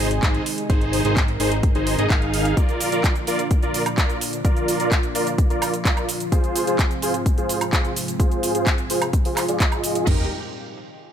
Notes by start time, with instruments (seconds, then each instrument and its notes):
Already playing: analog synth bass G#1, analog synth pad C3 D#3 G#3 D#4 G#4
0.11 closed hi-hat
0.23 analog synth bass G#1, supersaw synth D#4 G#4 C5, kick, clap, closed hi-hat
0.35 closed hi-hat
0.46 open hi-hat
0.58 closed hi-hat
0.70 analog synth bass G#1, supersaw synth D#4 G#4 C5, analog synth pad A#4, kick, closed hi-hat
0.81 closed hi-hat
0.93 open hi-hat
1.05 analog synth bass G#1, supersaw synth D#4 G#4 C5, closed hi-hat
1.17 kick, clap, closed hi-hat
1.28 closed hi-hat
1.40 analog synth bass G#1, supersaw synth D#4 G#4 C5, open hi-hat
1.52 closed hi-hat
1.63 kick, closed hi-hat
1.75 analog synth bass G#1, supersaw synth D#4 G#4 C5, closed hi-hat
1.87 open hi-hat
1.98 analog synth bass G#1, supersaw synth D#4 G#4 D#5, closed hi-hat
2.10 analog synth bass G#1, supersaw synth D#4, kick, clap, closed hi-hat
2.22 closed hi-hat
2.34 open hi-hat
2.45 closed hi-hat
2.57 analog synth pad A#2 D3 F3 D4 F4, supersaw synth F4 A#4 D5, kick, closed hi-hat, shaker
2.69 closed hi-hat, shaker
2.81 open hi-hat, shaker
2.92 supersaw synth F4 A#4 D5, closed hi-hat, shaker
3.04 kick, clap, closed hi-hat, shaker
3.15 closed hi-hat, shaker
3.27 supersaw synth F4 A#4 D5, open hi-hat, shaker
3.39 closed hi-hat, shaker
3.51 kick, closed hi-hat, shaker
3.63 supersaw synth F4 A#4 D5, closed hi-hat, shaker
3.74 open hi-hat, shaker
3.86 closed hi-hat, high woodblock, shaker
3.98 supersaw synth F4 A#4 D5, kick, clap, closed hi-hat, shaker
4.10 closed hi-hat, shaker
4.21 open hi-hat, shaker
4.33 closed hi-hat, shaker
4.45 supersaw synth F4 A#4 D5, kick, closed hi-hat, shaker
4.57 closed hi-hat, shaker
4.68 open hi-hat, shaker
4.80 supersaw synth F4 A#4 D5, closed hi-hat, shaker
4.92 kick, clap, closed hi-hat, shaker
5.03 closed hi-hat, shaker
5.15 supersaw synth F4 A#4 D5, open hi-hat, shaker
5.27 closed hi-hat, shaker
5.38 kick, closed hi-hat, shaker
5.50 supersaw synth F4 A#4 D5, closed hi-hat, shaker
5.62 open hi-hat, high woodblock, shaker
5.74 closed hi-hat, shaker
5.85 supersaw synth F4 A#4 D5, kick, clap, closed hi-hat, shaker
5.97 closed hi-hat, high woodblock, shaker
6.09 open hi-hat, shaker
6.20 closed hi-hat, shaker
6.32 analog synth pad G#2 C3 C4, supersaw synth F4 G#4 C5, kick, closed hi-hat, shaker
6.44 closed hi-hat, shaker
6.56 open hi-hat, shaker
6.67 supersaw synth F4 G#4 C5, closed hi-hat, shaker
6.79 kick, clap, closed hi-hat, shaker
6.91 closed hi-hat, shaker
7.02 supersaw synth F4 G#4 C5, open hi-hat, shaker
7.14 closed hi-hat, shaker
7.26 kick, closed hi-hat, shaker
7.38 supersaw synth F4 G#4 C5, closed hi-hat, shaker
7.49 open hi-hat, shaker
7.61 closed hi-hat, high woodblock, shaker
7.73 supersaw synth F4 G#4 C5, kick, clap, closed hi-hat, shaker
7.85 closed hi-hat, shaker
7.96 open hi-hat, shaker
8.08 closed hi-hat, shaker
8.20 supersaw synth F4 G#4 C5, kick, closed hi-hat, shaker
8.31 closed hi-hat, shaker
8.43 open hi-hat, shaker
8.55 supersaw synth F4 G#4 C5, closed hi-hat, shaker
8.67 kick, clap, closed hi-hat, shaker
8.78 closed hi-hat, shaker
8.90 supersaw synth F4 G#4 C5, open hi-hat, shaker
9.02 closed hi-hat, high woodblock, shaker
9.13 kick, closed hi-hat, shaker
9.25 supersaw synth F4 G#4 C5, open hi-hat, shaker
9.37 clap, open hi-hat, high woodblock, shaker
9.48 supersaw synth F4 G#4 D5, closed hi-hat, shaker
9.60 kick, clap, closed hi-hat, shaker
9.72 closed hi-hat, high woodblock, shaker
9.84 open hi-hat, shaker
9.95 closed hi-hat, shaker
10.07 analog synth bass D#1, analog synth pad A#2 D#3 G3 D#4 G4, supersaw synth D#4 G4 A#4, kick, floor tom, crash